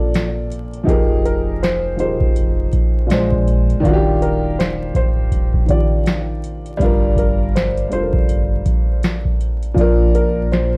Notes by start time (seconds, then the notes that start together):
Already playing: A#2 F3 D4 A4 D5
0.14 snare, closed hi-hat
0.52 closed hi-hat
0.73 closed hi-hat
0.83 F3 D#4 G4, kick
0.88 F1 G#4 A#4, closed hi-hat
1.26 A#4, closed hi-hat
1.63 C5, snare, closed hi-hat
1.96 D#1 F3 D#4 G4 C5, closed hi-hat
2.01 G#4 A#4
2.21 kick
2.36 F1, closed hi-hat
2.73 kick, closed hi-hat
3.07 A#2 G#3, closed hi-hat
3.11 A#1 D4 C5, snare
3.32 kick
3.48 closed hi-hat
3.70 closed hi-hat
3.80 D#3 D4, kick
3.84 D#1 F4 F#4, closed hi-hat
3.93 G4
4.22 A#4, closed hi-hat
4.59 C5, snare, closed hi-hat
4.95 D1 C5, kick, closed hi-hat
5.32 D#1, kick, closed hi-hat
5.54 kick
5.66 D#3 D4, kick, closed hi-hat
5.70 F4 G4 D5
6.06 snare, closed hi-hat
6.44 closed hi-hat
6.66 closed hi-hat
6.77 G1 G3 D4, kick, closed hi-hat
6.82 F4 A#4
7.16 A#4, kick, closed hi-hat
7.55 C5, snare, closed hi-hat
7.77 closed hi-hat
7.88 G3 D4, closed hi-hat
7.92 F1 F4 A4 C5
8.01 A#4
8.13 kick
8.29 G1, closed hi-hat
8.66 kick, closed hi-hat
9.03 snare, closed hi-hat
9.25 kick
9.41 closed hi-hat
9.63 closed hi-hat
9.74 A#1 A#2 F3, kick, closed hi-hat
9.79 D4 A#4
10.15 A#4, closed hi-hat
10.52 C5, snare, closed hi-hat